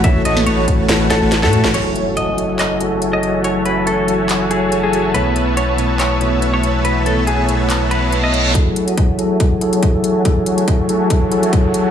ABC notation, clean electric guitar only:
X:1
M:4/4
L:1/16
Q:"Swing 16ths" 1/4=141
K:F#m
V:1 name="Clean electric guitar"
e2 ^d2 c2 z4 A2 z A2 z | c3 z ^d3 z d2 z3 d2 z | c2 B2 A2 z4 G2 z G2 z | B3 z c3 z c2 z3 c2 z |
B2 A2 G2 z4 B2 z ^d2 z | z16 | z16 |]